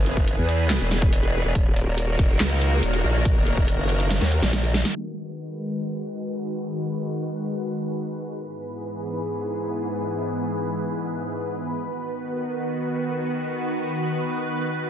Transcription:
Already playing: F#1 E3 B3 G#4 B4
0.06 closed hi-hat
0.17 kick
0.27 closed hi-hat
0.38 E2
0.49 closed hi-hat
0.70 snare, clap, closed hi-hat
0.81 E1
0.91 snare, closed hi-hat
1.02 kick
1.13 closed hi-hat
1.23 closed hi-hat
1.45 E1
1.55 D#1 D#3 A#3 F#4 A#4, kick, closed hi-hat
1.76 closed hi-hat
1.87 D#1
1.98 closed hi-hat
2.19 E1, kick, closed hi-hat
2.40 C#2, snare, clap, closed hi-hat
2.61 closed hi-hat
2.83 D#1, closed hi-hat
2.94 closed hi-hat
3.04 A#1
3.25 kick, closed hi-hat
3.36 E1
3.47 closed hi-hat
3.57 kick
3.68 closed hi-hat
3.79 F#1
3.89 closed hi-hat
4.00 closed hi-hat
4.10 snare, closed hi-hat
4.21 D#2, snare
4.32 closed hi-hat
4.42 A#1, snare
4.53 snare, closed hi-hat
4.64 closed hi-hat
4.74 snare
4.85 snare
4.95 D#3 G#3 F#4 B4
8.36 G#2 E3 B3 G#4 B4
11.76 D#3 B3 F#4

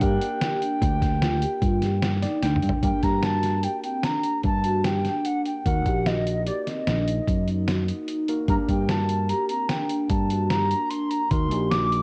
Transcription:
0.00 G2 A#3 D4 G4 A#4 G5, kick, closed hi-hat
0.21 closed hi-hat
0.41 G4, snare, closed hi-hat
0.61 D4, closed hi-hat
0.81 D2 D4, kick, closed hi-hat
1.02 kick, snare, closed hi-hat
1.22 F4, snare, closed hi-hat
1.42 G4, closed hi-hat
1.62 G2 F4, kick, closed hi-hat
1.82 G4, snare, closed hi-hat
2.02 snare, closed hi-hat
2.22 D#4 D5, snare, closed hi-hat
2.42 D2 D4 G5, snare, closed hi-hat
2.56 mid tom
2.62 G2 D4, closed hi-hat
2.69 floor tom
2.83 G2 A#3 D4 G4 A#4 G5, kick, closed hi-hat
3.03 G2 G4 A#5, kick, snare, closed hi-hat
3.23 F#4 A5, snare, closed hi-hat
3.43 snare, closed hi-hat
3.63 G4 G5, closed hi-hat
3.83 C4 G5, closed hi-hat
4.03 D4 A#5, snare, closed hi-hat
4.23 D4, closed hi-hat
4.43 G2 A5, kick, closed hi-hat
4.64 F#4, closed hi-hat
4.84 G4 G5, snare, closed hi-hat
5.05 D4, snare, closed hi-hat
5.25 D4 F#5, closed hi-hat
5.45 G5, closed hi-hat
5.65 D#2 A#3 D#4 F#4 A#4 F#5, kick, closed hi-hat
5.86 A#1 G4, kick, closed hi-hat
6.06 F#4 D#5, snare, closed hi-hat
6.27 closed hi-hat
6.46 G4 D5, closed hi-hat
6.67 C4 D#5, snare, closed hi-hat
6.87 A#1 D4, snare, closed hi-hat
7.08 D#4, closed hi-hat
7.27 F#2, kick, closed hi-hat
7.48 D#4, closed hi-hat
7.68 F#4, snare, closed hi-hat
7.88 D#4, closed hi-hat
8.08 D#4, closed hi-hat
8.28 A#3 D#4 F#4 A#4, closed hi-hat
8.48 G2 A#3 D4 G4 A#4 A#5, kick, closed hi-hat
8.69 G2 G4 G5, kick, closed hi-hat
8.89 F#4 A5, snare, closed hi-hat
9.09 closed hi-hat
9.29 G4 A#5, closed hi-hat
9.49 C4 A#5, closed hi-hat
9.68 D4 G5, snare, closed hi-hat
9.89 D4, closed hi-hat
10.09 G2 A5, kick, closed hi-hat
10.30 F#4, closed hi-hat
10.49 G4 A#5, snare, closed hi-hat
10.71 D4, closed hi-hat
10.89 D4 C6, closed hi-hat
11.10 A#5, closed hi-hat
11.30 D#2 A#3 D#4 F#4 A#4 C6, kick, closed hi-hat
11.51 A#1 G4, closed hi-hat
11.70 F#4 D6, snare, closed hi-hat
11.92 closed hi-hat

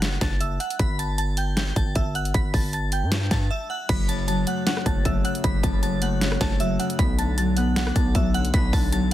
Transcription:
Already playing: F#1 F#5 F#6
0.02 snare, closed hi-hat
0.21 F#1 A5 A6, kick, snare, closed hi-hat
0.40 E5 E6, closed hi-hat
0.60 F#5 F#6, closed hi-hat
0.70 closed hi-hat
0.79 G1 B5 B6, kick, closed hi-hat
0.99 A5 A6, closed hi-hat
1.18 A5 A6, closed hi-hat
1.37 G5 G6, closed hi-hat
1.57 G5 G6, snare, closed hi-hat
1.76 G1 A5 A6, kick, closed hi-hat
1.95 G1 E5 E6, kick, closed hi-hat
2.15 F#5 F#6, closed hi-hat
2.25 closed hi-hat
2.34 G1 B5 B6, kick, closed hi-hat
2.54 G1 A5 A6, kick, open hi-hat
2.73 A5 A6, closed hi-hat
2.92 G5 G6, closed hi-hat
3.03 G2
3.12 snare, closed hi-hat
3.31 G2 A5 A6, kick, snare, closed hi-hat
3.51 E5 E6
3.70 F#5 F#6
3.89 F#1 F#2 B5 B6, kick, closed hi-hat, crash
4.08 C#3 A5 A6, closed hi-hat
4.28 F#3 A5 A6, closed hi-hat
4.47 A3 F#5 F#6, closed hi-hat
4.67 C#4 F#5 F#6, snare, closed hi-hat
4.77 cross-stick
4.86 F#1 A3 A5 A6, kick, closed hi-hat
5.05 F#1 F#3 E5 E6, kick, closed hi-hat
5.24 C#3 F#5 F#6, closed hi-hat
5.35 closed hi-hat
5.44 F#1 F#2 B5 B6, kick, closed hi-hat
5.63 F#1 C#3 A5 A6, kick, closed hi-hat
5.83 F#3 A5 A6, closed hi-hat
6.02 A3 F#5 F#6, closed hi-hat
6.21 C#4, snare, closed hi-hat
6.32 cross-stick
6.41 F#1 A3 A5 A6, kick, snare, closed hi-hat
6.60 F#3 E5 E6, closed hi-hat
6.79 C#3 F#5 F#6, closed hi-hat
6.90 closed hi-hat
6.99 B1 B2 B5 B6, kick, closed hi-hat
7.18 D3 A5 A6, closed hi-hat
7.38 F#3 A5 A6, closed hi-hat
7.57 B3 F#5 F#6, closed hi-hat
7.76 D4 F#5 F#6, snare, closed hi-hat
7.87 cross-stick
7.96 B1 B3 A5 A6, kick, closed hi-hat
8.15 B1 F#3 E5 E6, kick, closed hi-hat
8.34 D3 F#5 F#6, closed hi-hat
8.45 closed hi-hat
8.54 B1 B2 B5 B6, kick, closed hi-hat
8.73 B1 D3 A5 A6, kick, open hi-hat
8.92 F#3 A5 A6, closed hi-hat

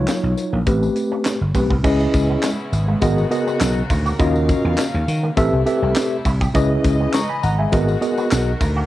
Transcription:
Already playing: D#4 F4 C#5
0.00 F#3
0.08 A#3, snare, clap, closed hi-hat, tambourine
0.23 B1
0.37 muted clean electric guitar stroke, closed hi-hat, tambourine
0.53 A#1 A#3
0.66 A1 A3 B3 C4 G4 B4, kick, closed hi-hat, tambourine
0.82 muted clean electric guitar stroke, tambourine
0.96 closed hi-hat, tambourine
1.11 C#4
1.25 muted clean electric guitar stroke, snare, clap, closed hi-hat, tambourine
1.41 G1
1.54 B1 A3 B3 C4 G4 B4, kick, open hi-hat, tambourine
1.70 C2 B3, kick
1.84 C#2 C#3 G#3 B3 C#4 E4 G#4 B4 D#5, kick, crash, tambourine
2.00 tambourine
2.13 C#2, muted clean electric guitar stroke, kick, closed hi-hat, tambourine
2.29 B3
2.43 G#3, snare, clap, closed hi-hat, tambourine
2.72 G#1, muted clean electric guitar stroke, closed hi-hat, tambourine
2.88 G#3
3.01 G#1 B3 F#4 G#4 A#4 D#5, kick, closed hi-hat, tambourine
3.18 muted clean electric guitar stroke, tambourine
3.30 B3 F#4 G#4 A#4 D#5, closed hi-hat, tambourine
3.47 B3, tambourine
3.60 B1, muted clean electric guitar stroke, snare, clap, closed hi-hat, tambourine
3.90 D2 D#4, kick, open hi-hat, tambourine
4.06 F#4, tambourine
4.19 D#2 F#3 C#4 D#4 F4 F#4 A#4 D#5 F5, kick, closed hi-hat, tambourine
4.35 tambourine
4.49 muted clean electric guitar stroke, kick, closed hi-hat, tambourine
4.64 E2 B3
4.78 A#3, snare, clap, closed hi-hat, tambourine
4.94 D#2
5.08 D#3, muted clean electric guitar stroke, closed hi-hat, tambourine
5.23 A#3
5.37 A1 C3 G3 A3 C4 E4 G4 A4 B4 E5, kick, closed hi-hat, tambourine
5.53 C2, muted clean electric guitar stroke
5.66 C4 G4 A4 B4 E5, closed hi-hat, tambourine
5.82 C2 C4
5.96 muted clean electric guitar stroke, snare, clap, closed hi-hat, tambourine
6.25 C2 E4, kick, open hi-hat, tambourine
6.41 G4, kick, tambourine
6.54 C#2 C#3 E3 G#3 C#4 E4 G#4 B4 D#5, kick, closed hi-hat, tambourine
6.84 C#2, muted clean electric guitar stroke, kick, closed hi-hat, tambourine
7.00 B3
7.14 G#3 A#5 C#6, snare, clap, closed hi-hat, tambourine
7.29 G#5 B5
7.43 G#1 F#5 A#5, muted clean electric guitar stroke, closed hi-hat, tambourine
7.59 G#3 E5 G#5
7.72 G#1 D#3 B3 F#4 G#4 A#4 D#5, kick, closed hi-hat, tambourine
7.88 muted clean electric guitar stroke, tambourine
8.01 B3 F#4 G#4 A#4 D#5, closed hi-hat, tambourine
8.18 B3, tambourine
8.31 B1, muted clean electric guitar stroke, snare, clap, closed hi-hat, tambourine
8.61 D2 D#4, kick, open hi-hat, tambourine
8.76 F#4

